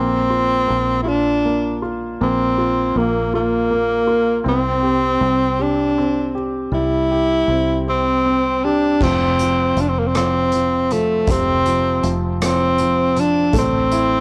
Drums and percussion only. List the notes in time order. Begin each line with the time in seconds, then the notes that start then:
9.01 kick, crash
9.39 closed hi-hat
9.77 closed hi-hat
10.15 cross-stick, closed hi-hat
10.52 closed hi-hat
10.91 closed hi-hat
11.27 kick, closed hi-hat
11.66 closed hi-hat
12.03 closed hi-hat
12.41 cross-stick, closed hi-hat
12.78 closed hi-hat
13.16 closed hi-hat
13.53 kick, closed hi-hat
13.91 closed hi-hat